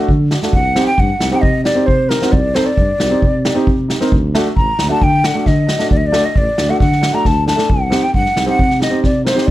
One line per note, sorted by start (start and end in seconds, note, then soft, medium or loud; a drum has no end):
0.09 0.35 D3 medium
0.09 kick medium
0.31 0.36 D4 soft
0.31 0.37 F#4 soft
0.31 snare medium
0.43 0.54 A3 medium
0.43 0.54 D4 medium
0.43 0.54 F#4 medium
0.43 snare medium
0.53 0.80 C2 medium
0.53 0.85 F#5 loud
0.53 kick medium
0.75 0.87 C4 medium
0.75 0.87 D#4 medium
0.75 0.87 G4 medium
0.75 snare medium
0.87 1.01 G5 medium
0.98 1.12 G2 medium
0.98 1.32 F#5 medium
0.98 kick medium
1.19 1.33 C2 medium
1.19 1.26 D#4 soft
1.19 1.27 G4 soft
1.19 snare medium
1.32 1.43 C4 medium
1.32 1.43 D#4 medium
1.32 1.43 G4 medium
1.32 1.36 F#5 medium
1.32 1.39 G5 medium
1.38 1.64 D#5 medium
1.38 1.43 F#5 medium
1.43 1.70 C3 medium
1.43 kick medium
1.64 1.70 D#4 soft
1.64 1.71 G4 soft
1.64 1.88 D5 medium
1.64 snare medium
1.75 1.87 C4 medium
1.75 1.87 D#4 soft
1.75 1.87 G4 medium
1.86 2.15 C3 medium
1.86 2.11 C5 medium
1.86 kick medium
2.09 2.16 D#4 soft
2.09 2.16 G4 soft
2.09 2.33 A#4 medium
2.09 snare medium
2.22 2.33 C4 medium
2.22 2.33 D#4 medium
2.22 2.33 F#4 medium
2.22 snare medium
2.32 2.60 C2 medium
2.32 2.56 D5 medium
2.32 kick medium
2.55 2.66 C4 medium
2.55 2.67 D#4 medium
2.55 2.67 A4 medium
2.55 2.67 C5 medium
2.55 snare medium
2.66 3.56 D5 medium
2.77 2.91 G2 medium
2.77 kick medium
2.99 3.13 C2 medium
2.99 3.05 D#4 soft
2.99 3.05 F#4 soft
2.99 snare medium
3.10 3.22 C4 medium
3.10 3.22 D#4 soft
3.10 3.22 G4 medium
3.22 3.50 C3 medium
3.22 kick medium
3.45 3.50 D#4 soft
3.45 3.51 G4 soft
3.45 snare medium
3.55 3.66 C4 medium
3.55 3.67 D#4 medium
3.55 3.67 G4 medium
3.67 3.94 C3 medium
3.67 kick medium
3.88 3.94 D#4 soft
3.88 3.95 G4 soft
3.88 snare medium
4.01 4.12 C4 medium
4.01 4.12 D#4 medium
4.01 4.12 A#4 medium
4.01 snare soft
4.12 4.39 D2 medium
4.12 kick medium
4.35 4.46 A3 medium
4.35 4.46 D4 medium
4.35 4.46 F#4 medium
4.35 snare medium
4.56 4.70 A1 medium
4.56 4.88 A#5 medium
4.56 kick medium
4.78 4.92 D2 medium
4.78 4.84 D4 soft
4.78 4.85 F#4 soft
4.78 snare medium
4.89 5.01 A3 medium
4.89 5.01 D4 medium
4.89 5.01 F#4 medium
4.89 5.05 A5 medium
5.02 5.28 D3 medium
5.02 5.27 G5 loud
5.02 kick medium
5.23 5.29 D4 soft
5.23 5.30 A4 soft
5.23 5.48 F#5 medium
5.23 snare medium
5.34 5.46 A3 medium
5.34 5.46 D4 soft
5.34 5.46 F#4 medium
5.46 5.73 D3 medium
5.46 5.90 D#5 medium
5.46 kick medium
5.46 snare soft
5.67 5.73 D4 soft
5.67 5.74 F#4 soft
5.67 snare medium
5.79 5.90 A3 soft
5.79 5.91 D4 medium
5.79 5.91 F#4 medium
5.79 snare medium
5.91 6.18 D2 medium
5.91 5.98 D5 medium
5.91 kick medium
5.97 6.08 D#5 medium
6.06 6.27 D5 loud
6.12 6.24 A3 medium
6.12 6.24 D4 medium
6.12 6.24 F#4 medium
6.12 snare medium
6.25 6.39 D#5 medium
6.36 6.49 A1 medium
6.36 6.72 D5 medium
6.36 kick medium
6.57 6.71 D2 medium
6.57 6.63 D4 soft
6.57 6.63 F#4 soft
6.57 snare medium
6.69 6.80 A3 medium
6.69 6.80 D4 medium
6.69 6.81 F#4 medium
6.69 6.80 F#5 medium
6.80 7.07 D3 medium
6.80 7.16 F#5 medium
6.80 kick medium
6.80 snare soft
6.92 snare soft
7.01 7.07 D4 soft
7.01 7.08 F#4 soft
7.01 snare medium
7.13 7.24 A3 medium
7.13 7.25 D4 medium
7.13 7.25 F#4 medium
7.13 7.28 A#5 medium
7.25 7.52 D2 medium
7.25 7.47 A5 loud
7.25 kick medium
7.25 snare soft
7.46 7.52 D4 soft
7.46 7.52 A4 soft
7.46 7.71 A5 medium
7.46 snare medium
7.56 7.68 A3 medium
7.56 7.69 D4 medium
7.56 7.69 A4 medium
7.56 snare medium
7.70 7.97 C2 medium
7.70 8.05 F#5 medium
7.70 kick medium
7.90 8.02 C4 medium
7.90 8.03 D#4 medium
7.90 8.03 G4 medium
7.90 snare medium
8.03 8.14 G5 medium
8.14 8.28 G2 medium
8.14 8.45 F#5 medium
8.14 kick medium
8.26 snare soft
8.36 8.50 C2 medium
8.36 8.42 D#4 soft
8.36 8.42 G4 soft
8.36 snare medium
8.46 8.58 C4 medium
8.46 8.58 D#4 medium
8.46 8.59 G4 medium
8.46 8.79 F#5 medium
8.59 8.86 C3 medium
8.59 kick medium
8.71 snare soft
8.80 8.86 D#4 soft
8.80 8.86 G4 soft
8.80 9.02 D#5 medium
8.80 snare medium
8.90 9.02 C4 medium
8.90 9.02 D#4 soft
8.90 9.03 G4 medium
9.04 9.31 C3 medium
9.04 9.24 D5 medium
9.04 kick medium
9.04 snare soft
9.24 9.30 D#4 soft
9.24 9.31 A#4 soft
9.24 9.48 C5 medium
9.24 snare medium
9.34 9.46 C4 medium
9.34 9.47 D#4 soft
9.34 9.47 G4 medium
9.34 snare medium
9.47 9.51 D2 medium
9.47 9.51 D5 medium